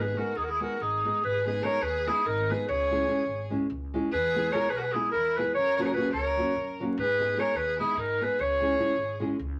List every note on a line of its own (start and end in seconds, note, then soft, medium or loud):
0.00 0.13 G#1 loud
0.00 0.14 G#3 medium
0.00 0.14 B3 medium
0.00 0.14 D#4 medium
0.00 0.19 G#4 medium
0.00 0.15 G#4 medium
0.00 0.19 B4 medium
0.17 0.32 G#3 medium
0.17 0.32 B3 medium
0.17 0.32 D#4 medium
0.17 0.38 F#4 medium
0.17 0.33 G#4 medium
0.17 0.38 A#4 medium
0.36 0.63 D#2 medium
0.36 0.44 D#4 medium
0.36 0.45 G#4 medium
0.42 0.50 F#4 medium
0.42 0.51 A#4 medium
0.49 0.61 E4 medium
0.49 0.61 G#4 medium
0.60 0.75 G#3 medium
0.60 0.76 B3 medium
0.60 0.76 D#4 medium
0.60 0.82 F#4 medium
0.60 0.76 G#4 medium
0.60 0.83 A#4 medium
0.80 1.06 G#1 loud
0.80 1.22 D#4 medium
0.80 1.24 G#4 medium
1.05 1.20 G#3 medium
1.05 1.20 B3 medium
1.05 1.20 D#4 medium
1.05 1.20 G#4 medium
1.23 1.58 G#1 loud
1.23 1.44 G#4 medium
1.23 1.45 B4 loud
1.46 1.60 G#3 medium
1.46 1.60 B3 medium
1.46 1.61 D#4 medium
1.46 1.64 G#4 medium
1.46 1.61 G#4 medium
1.46 1.66 B4 medium
1.63 1.77 G#3 medium
1.63 1.78 B3 medium
1.63 1.78 D#4 medium
1.63 1.78 G#4 medium
1.63 1.83 A#4 loud
1.63 1.84 C#5 loud
1.81 2.08 D#2 medium
1.81 2.09 G#4 loud
1.81 2.09 B4 medium
2.06 2.21 G#3 medium
2.06 2.21 B3 medium
2.06 2.22 D#4 medium
2.06 2.26 E4 medium
2.06 2.28 G#4 medium
2.06 2.22 G#4 medium
2.25 2.52 G#1 loud
2.25 2.51 D#4 medium
2.25 2.53 A#4 loud
2.50 2.65 G#3 medium
2.50 2.65 B3 medium
2.50 2.65 D#4 medium
2.50 2.69 G#4 medium
2.50 2.65 G#4 medium
2.50 2.68 B4 medium
2.69 3.03 C#2 loud
2.69 3.47 G#4 medium
2.69 3.47 C#5 loud
2.91 3.05 G#3 medium
2.91 3.05 C#4 medium
2.91 3.05 E4 medium
2.91 3.06 G#4 medium
3.07 3.22 G#3 medium
3.07 3.22 C#4 medium
3.07 3.22 E4 medium
3.07 3.23 G#4 medium
3.26 3.52 G#1 medium
3.50 3.65 G#3 medium
3.50 3.66 C#4 medium
3.50 3.66 E4 medium
3.50 3.66 G#4 medium
3.70 3.96 C#2 loud
3.94 4.09 G#3 medium
3.94 4.09 C#4 medium
3.94 4.09 E4 medium
3.94 4.10 G#4 medium
4.12 4.48 E2 loud
4.12 4.54 G#4 loud
4.12 4.54 B4 loud
4.35 4.48 G#3 medium
4.35 4.49 B3 medium
4.35 4.49 E4 medium
4.35 4.50 G#4 medium
4.52 4.67 G#3 medium
4.52 4.67 B3 medium
4.52 4.67 E4 medium
4.52 4.68 G#4 medium
4.52 4.71 A#4 medium
4.52 4.71 C#5 loud
4.70 4.96 B1 medium
4.70 4.80 G#4 medium
4.70 4.79 B4 loud
4.77 4.85 F#4 medium
4.77 4.83 A#4 medium
4.81 4.95 G#4 medium
4.81 4.95 B4 loud
4.93 5.09 G#3 medium
4.93 5.09 B3 medium
4.93 5.11 E4 medium
4.93 5.10 E4 medium
4.93 5.11 G#4 medium
4.93 5.10 G#4 medium
5.11 5.40 E2 loud
5.11 5.39 E4 medium
5.11 5.38 A#4 loud
5.37 5.52 G#3 medium
5.37 5.53 B3 medium
5.37 5.53 E4 medium
5.37 5.55 G#4 medium
5.37 5.53 G#4 medium
5.37 5.54 B4 loud
5.55 5.91 F#2 loud
5.55 5.76 A#4 medium
5.55 5.75 C#5 loud
5.76 5.92 F#3 medium
5.76 5.92 A#3 medium
5.76 5.92 C#4 medium
5.76 5.93 F#4 medium
5.76 5.82 A#4 medium
5.76 5.83 C#5 loud
5.81 5.87 G#4 medium
5.81 5.87 B4 medium
5.85 5.94 A#4 medium
5.85 5.93 C#5 medium
5.94 6.09 F#3 medium
5.94 6.09 A#3 medium
5.94 6.09 C#4 medium
5.94 6.10 F#4 medium
5.94 6.12 G#4 medium
5.94 6.11 B4 loud
6.12 6.39 C#2 medium
6.12 6.76 A#4 medium
6.12 6.76 C#5 medium
6.37 6.52 F#3 medium
6.37 6.52 A#3 medium
6.37 6.52 C#4 medium
6.37 6.53 F#4 medium
6.56 6.82 F#2 loud
6.80 6.95 F#3 medium
6.80 6.95 A#3 medium
6.80 6.95 C#4 medium
6.80 6.96 F#4 medium
6.98 7.32 G#2 loud
6.98 7.41 G#4 medium
6.98 7.41 B4 loud
7.19 7.34 G#3 medium
7.19 7.34 B3 medium
7.19 7.34 D#4 medium
7.19 7.35 G#4 medium
7.37 7.51 G#3 medium
7.37 7.51 B3 medium
7.37 7.52 D#4 medium
7.37 7.52 G#4 medium
7.37 7.57 A#4 medium
7.37 7.58 C#5 loud
7.55 7.81 D#2 medium
7.55 7.79 G#4 medium
7.55 7.79 B4 loud
7.79 7.94 G#3 medium
7.79 7.94 B3 medium
7.79 7.94 D#4 medium
7.79 7.99 E4 medium
7.79 8.00 G#4 medium
7.79 7.95 G#4 medium
7.97 8.23 G#2 loud
7.97 8.23 D#4 medium
7.97 8.25 A#4 loud
8.20 8.36 G#3 medium
8.20 8.36 B3 medium
8.20 8.37 D#4 medium
8.20 8.41 G#4 medium
8.20 8.37 G#4 medium
8.20 8.42 B4 loud
8.39 8.74 C#2 loud
8.39 9.22 G#4 medium
8.39 9.21 C#5 loud
8.61 8.75 G#3 medium
8.61 8.75 C#4 medium
8.61 8.76 E4 medium
8.61 8.76 G#4 medium
8.79 8.93 G#3 medium
8.79 8.93 C#4 medium
8.79 8.94 E4 medium
8.79 8.94 G#4 medium
8.96 9.22 G#1 medium
9.20 9.35 G#3 medium
9.20 9.35 C#4 medium
9.20 9.36 E4 medium
9.20 9.36 G#4 medium
9.39 9.60 C#2 loud